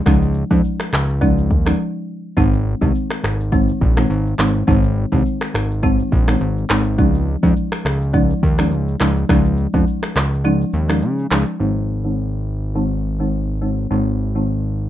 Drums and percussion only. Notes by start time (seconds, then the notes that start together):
0.06 finger snap, kick, cross-stick, shaker
0.22 shaker
0.34 shaker
0.51 kick, shaker
0.64 shaker
0.80 finger snap, cross-stick, shaker
0.92 finger snap, cross-stick, clap, shaker
1.10 shaker
1.21 kick, shaker
1.38 shaker
1.50 kick, shaker
1.67 finger snap, cross-stick, shaker
2.37 kick, shaker
2.53 shaker
2.81 kick, shaker
2.95 shaker
3.10 finger snap, cross-stick, shaker
3.24 finger snap, cross-stick
3.40 shaker
3.52 kick, shaker
3.69 shaker
3.81 kick
3.97 finger snap, cross-stick, shaker
4.10 shaker
4.27 shaker
4.39 finger snap, cross-stick, clap
4.54 shaker
4.68 kick, shaker
4.84 shaker
5.12 kick, shaker
5.26 shaker
5.41 finger snap, cross-stick, shaker
5.55 finger snap, cross-stick
5.71 shaker
5.83 kick, shaker
5.99 shaker
6.12 kick
6.28 finger snap, cross-stick, shaker
6.40 shaker
6.57 shaker
6.70 finger snap, cross-stick, clap
6.85 shaker
6.98 kick, shaker
7.14 shaker
7.43 kick, shaker
7.56 shaker
7.72 finger snap, cross-stick, shaker
7.86 finger snap, cross-stick
8.02 shaker
8.13 kick, shaker
8.30 shaker
8.43 kick
8.59 finger snap, cross-stick, shaker
8.71 shaker
8.88 shaker
9.00 finger snap, cross-stick, clap
9.16 shaker
9.29 finger snap, kick, cross-stick, shaker
9.45 shaker
9.57 shaker
9.74 kick, shaker
9.87 shaker
10.03 finger snap, cross-stick, shaker
10.15 finger snap, cross-stick, clap, shaker
10.33 shaker
10.44 shaker
10.61 shaker
10.73 shaker
10.90 finger snap, cross-stick, shaker
11.02 shaker
11.19 shaker
11.31 finger snap, cross-stick, clap, shaker
11.47 shaker